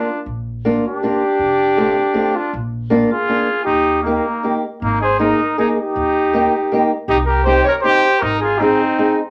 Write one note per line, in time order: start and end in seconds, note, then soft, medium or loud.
0.00 0.20 D4 medium
0.00 0.19 F4 medium
0.26 0.76 A#1 medium
0.65 0.83 A#3 medium
0.65 0.84 D4 medium
0.65 0.84 F4 medium
0.85 2.37 D4 medium
0.85 2.37 G4 medium
1.03 1.21 A#3 medium
1.03 1.21 D4 medium
1.03 1.22 F4 medium
1.39 1.88 F1 medium
1.77 1.96 A3 medium
1.77 1.96 C4 medium
1.77 1.96 F4 medium
2.14 2.33 A3 medium
2.14 2.33 C4 medium
2.14 2.34 F4 medium
2.35 2.54 D4 medium
2.35 2.53 F4 medium
2.53 3.02 A#1 medium
2.90 3.09 A#3 medium
2.90 3.09 D4 medium
2.90 3.09 F4 medium
3.12 3.63 F4 medium
3.12 3.63 G#4 medium
3.28 3.47 A#3 medium
3.28 3.47 D4 soft
3.28 3.47 F4 medium
3.64 4.16 D#2 medium
3.64 4.01 D#4 medium
3.64 4.00 G4 medium
4.02 4.59 A#3 medium
4.02 4.24 A#3 medium
4.02 4.60 D#4 medium
4.07 4.24 D#4 medium
4.07 4.24 G4 medium
4.43 4.62 A#3 soft
4.43 4.62 D#4 soft
4.43 4.63 G4 soft
4.82 5.32 G#1 medium
4.82 5.01 A#3 medium
4.82 5.01 D#4 medium
5.01 5.18 G#4 medium
5.01 5.19 C5 medium
5.19 5.38 A#3 medium
5.19 5.55 D#4 medium
5.19 5.39 D#4 medium
5.19 5.39 G#4 medium
5.19 5.56 A#4 medium
5.58 5.77 A#3 medium
5.58 5.77 D#4 medium
5.58 5.68 D#4 medium
5.58 5.67 G#4 medium
5.58 5.77 G#4 medium
5.77 6.87 D#4 medium
5.77 6.87 G4 medium
5.96 6.45 D#2 medium
6.33 6.52 A#3 medium
6.33 6.53 D#4 medium
6.33 6.53 G4 medium
6.72 6.90 A#3 medium
6.72 6.90 D#4 medium
6.72 6.91 G4 medium
7.08 7.57 C2 loud
7.08 7.18 D#4 medium
7.08 7.17 G4 loud
7.26 7.45 G4 medium
7.26 7.43 A#4 medium
7.44 7.65 C4 medium
7.44 7.65 D#4 medium
7.44 7.65 G4 medium
7.44 7.63 C5 loud
7.64 7.75 A#4 medium
7.64 7.72 C#5 medium
7.81 8.03 C4 medium
7.81 8.02 D#4 medium
7.81 8.24 G4 loud
7.81 8.03 G4 medium
7.81 8.21 C5 medium
8.19 8.72 G#1 medium
8.19 8.42 D#4 medium
8.19 8.39 A#4 medium
8.40 8.63 F4 medium
8.40 8.60 G#4 medium
8.59 8.79 C4 medium
8.59 9.21 C4 medium
8.59 9.19 D#4 loud
8.59 8.80 D#4 medium
8.59 8.80 G#4 medium
8.99 9.18 C4 medium
8.99 9.18 D#4 medium
8.99 9.18 G#4 medium